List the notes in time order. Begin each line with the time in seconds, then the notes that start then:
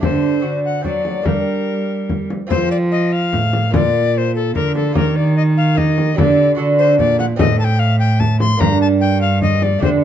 0.00 D3 A3 D4 G4 C5, frame drum
0.40 D3 C4 D4 F#4
0.65 F#5
0.81 F#3 C4 D4 F#4 D5, frame drum
1.05 frame drum
1.22 G3 A#3 D4 G4 A#4, frame drum
2.09 frame drum
2.30 frame drum
2.47 F3 C4 F4 A4 C5, frame drum
2.71 D5
2.92 D#5
3.12 F5
3.32 A2, frame drum
3.53 frame drum
3.71 A#2 A#3 F4 A#4 D5, frame drum
4.14 C5 D5
4.35 A4
4.55 D3 A#4, frame drum
4.75 A4, frame drum
4.93 D#3 A#3 D#4 G4 A#4, frame drum
5.16 D5
5.36 D#5
5.57 F5
5.75 A#3 D#4 G4 D#5, frame drum
5.98 frame drum
6.15 D3 D4 G4 A4 D5, frame drum
6.19 D3
6.55 D4 F#4 A4
6.59 D3
6.79 C5
6.98 A#2 D5, frame drum
7.19 F#5, frame drum
7.36 A2 C4 D#4 A4 D#5, frame drum
7.40 A2
7.59 A5
7.64 G5
7.79 F5
7.99 G5
8.20 A5, frame drum
8.40 C6, frame drum
8.57 G2 A#3 D4 A#4 A#5, frame drum
8.61 G2
8.81 A5
9.01 G5
9.21 F5
9.42 D#5, frame drum
9.62 D5, frame drum
9.78 D3 A3 D4 G4, frame drum
9.83 C5